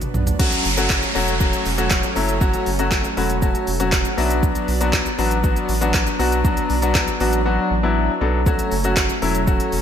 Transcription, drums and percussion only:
0.01 closed hi-hat, mid tom, shaker
0.14 mid tom, shaker
0.27 closed hi-hat, floor tom, shaker
0.40 kick, crash, shaker
0.52 closed hi-hat, shaker
0.65 open hi-hat, shaker
0.77 closed hi-hat, shaker
0.90 kick, snare, clap, shaker
1.03 closed hi-hat, shaker
1.15 open hi-hat, shaker
1.28 closed hi-hat, shaker
1.40 kick, shaker
1.53 closed hi-hat, shaker
1.65 open hi-hat, shaker
1.78 closed hi-hat, shaker
1.91 kick, snare, clap, shaker
2.03 closed hi-hat, shaker
2.16 open hi-hat, shaker
2.29 closed hi-hat, shaker
2.41 kick, shaker
2.54 closed hi-hat, shaker
2.66 open hi-hat, shaker
2.79 closed hi-hat, shaker
2.91 kick, snare, clap, shaker
3.04 closed hi-hat, shaker
3.17 open hi-hat, shaker
3.30 closed hi-hat, shaker
3.42 kick, shaker
3.55 closed hi-hat, shaker
3.67 open hi-hat, shaker
3.80 closed hi-hat, shaker
3.92 kick, snare, clap, shaker
4.05 closed hi-hat, shaker
4.18 open hi-hat, shaker
4.30 closed hi-hat, shaker
4.43 kick, shaker
4.55 closed hi-hat, shaker
4.68 open hi-hat, shaker
4.81 closed hi-hat, shaker
4.93 kick, snare, clap, shaker
5.06 closed hi-hat, shaker
5.19 open hi-hat, shaker
5.31 closed hi-hat, shaker
5.44 kick, shaker
5.56 closed hi-hat, shaker
5.69 open hi-hat, shaker
5.82 closed hi-hat, shaker
5.94 kick, snare, clap, shaker
6.07 closed hi-hat, shaker
6.20 open hi-hat, shaker
6.32 closed hi-hat, shaker
6.45 kick, shaker
6.57 closed hi-hat, shaker
6.70 open hi-hat, shaker
6.82 closed hi-hat, shaker
6.95 kick, snare, clap, shaker
7.08 closed hi-hat, shaker
7.20 open hi-hat, shaker
7.33 closed hi-hat, shaker
8.46 kick, shaker
8.59 closed hi-hat, shaker
8.72 open hi-hat, shaker
8.84 closed hi-hat, shaker
8.97 kick, snare, clap, shaker
9.09 closed hi-hat, shaker
9.22 open hi-hat, shaker
9.35 closed hi-hat, shaker
9.47 kick, shaker
9.60 closed hi-hat, shaker
9.72 open hi-hat, shaker

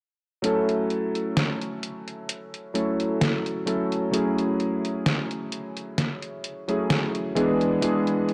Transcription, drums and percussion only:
0.44 closed hi-hat
0.69 closed hi-hat
0.90 closed hi-hat
1.15 closed hi-hat
1.37 snare, closed hi-hat
1.61 closed hi-hat
1.83 closed hi-hat
2.08 closed hi-hat
2.29 closed hi-hat
2.54 closed hi-hat
2.75 closed hi-hat
3.00 closed hi-hat
3.21 snare, closed hi-hat
3.46 closed hi-hat
3.67 closed hi-hat
3.92 closed hi-hat
4.14 closed hi-hat
4.38 closed hi-hat
4.60 closed hi-hat
4.85 closed hi-hat
5.06 snare, closed hi-hat
5.31 closed hi-hat
5.52 closed hi-hat
5.77 closed hi-hat
5.98 snare, closed hi-hat
6.22 closed hi-hat
6.44 closed hi-hat
6.69 closed hi-hat
6.90 snare, closed hi-hat
7.15 closed hi-hat
7.37 closed hi-hat
7.61 closed hi-hat
7.82 closed hi-hat
8.07 closed hi-hat
8.29 closed hi-hat

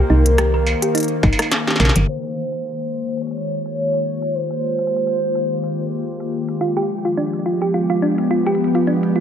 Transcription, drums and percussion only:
0.26 closed hi-hat
0.38 cross-stick, closed hi-hat
0.67 struck metal
0.82 closed hi-hat
0.95 closed hi-hat
0.98 closed hi-hat
1.00 closed hi-hat
1.03 closed hi-hat
1.04 closed hi-hat
1.08 closed hi-hat
1.23 kick, struck metal
1.33 struck metal
1.39 cross-stick, closed hi-hat, struck metal
1.51 snare, closed hi-hat
1.67 snare
1.70 snare
1.76 snare
1.80 snare, mid tom, struck metal
1.85 snare
1.89 snare
1.96 closed hi-hat, mid tom, struck metal
2.24 closed hi-hat
2.27 closed hi-hat
2.30 closed hi-hat
2.33 closed hi-hat
2.36 closed hi-hat
2.44 closed hi-hat
2.48 closed hi-hat
2.52 closed hi-hat
2.81 closed hi-hat
3.09 closed hi-hat
3.12 closed hi-hat
3.17 closed hi-hat
3.21 closed hi-hat
3.27 closed hi-hat
3.31 closed hi-hat
3.37 closed hi-hat
3.66 closed hi-hat
3.94 closed hi-hat
4.22 closed hi-hat
4.50 closed hi-hat
4.79 closed hi-hat
4.87 closed hi-hat
4.96 closed hi-hat
5.07 closed hi-hat
5.35 closed hi-hat
5.64 closed hi-hat
6.20 closed hi-hat
6.48 closed hi-hat
6.77 closed hi-hat
7.05 closed hi-hat
7.33 closed hi-hat
7.62 closed hi-hat
7.90 closed hi-hat
8.18 closed hi-hat
8.47 closed hi-hat
8.55 closed hi-hat
8.64 closed hi-hat
8.75 closed hi-hat
9.03 closed hi-hat

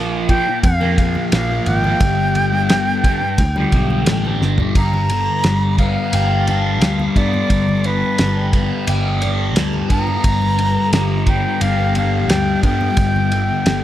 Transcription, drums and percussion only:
0.29 kick, ride, low conga
0.63 kick, ride
0.81 high conga
0.98 kick, ride
1.15 high conga
1.32 snare, ride
1.66 ride, low conga
1.84 high conga
2.00 kick, ride
2.35 ride, high conga
2.69 snare, ride
3.04 kick, ride, low conga
3.38 kick, ride
3.56 high conga
3.72 kick, ride
3.90 high conga
4.06 snare, ride, high conga
4.25 high conga
4.42 snare, low conga
4.58 floor tom, low conga
4.75 kick, ride
4.93 high conga
5.10 ride
5.44 snare, ride
5.78 kick, ride, low conga
6.13 ride
6.47 ride, high conga
6.81 snare, ride
7.00 high conga
7.16 kick, ride, low conga
7.34 high conga
7.50 kick, ride
7.69 high conga
7.84 ride
8.18 snare, ride
8.53 kick, ride, low conga
8.87 ride
9.22 ride, high conga
9.56 snare, ride
9.73 high conga
9.90 kick, ride
10.07 high conga
10.24 kick, ride
10.42 high conga
10.59 ride
10.93 snare, ride
11.27 kick, ride, low conga
11.61 ride
11.95 ride, high conga
12.30 snare, ride
12.63 kick, ride, low conga
12.81 high conga
12.97 kick, ride
13.16 high conga, low conga
13.32 ride
13.66 snare, ride

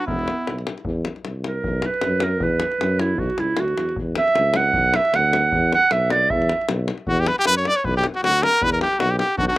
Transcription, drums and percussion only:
0.08 davul low
0.19 davul high
0.28 davul high
0.47 davul high
0.59 davul high
0.67 davul high
0.78 davul high
0.85 davul low
1.05 davul high
1.16 davul high
1.25 davul high
1.44 davul high
1.64 davul low
1.82 davul high
1.94 davul high
2.01 davul high
2.20 davul high
2.40 davul low
2.60 davul high
2.72 davul high
2.81 davul high
3.00 davul high
3.18 davul low
3.30 davul high
3.38 davul high
3.57 davul high
3.68 davul high
3.78 davul high
3.89 davul high
3.96 davul low
4.15 davul high
4.28 davul high
4.35 davul high
4.54 davul high
4.74 davul low
4.94 davul high
5.05 davul high
5.14 davul high
5.33 davul high
5.52 davul low
5.73 davul high
5.83 davul high
5.91 davul high
6.10 davul high
6.30 davul low
6.42 davul high
6.49 davul high
6.61 davul high
6.69 davul high
6.88 davul high
6.98 davul high
7.07 davul low
7.26 davul high
7.38 davul high
7.45 davul high
7.65 davul high
7.84 davul low
8.04 davul high
8.14 davul high
8.24 davul high
8.43 davul high
8.62 davul low
8.81 davul high
8.93 davul high
9.00 davul high
9.19 davul high
9.38 davul low
9.50 davul high

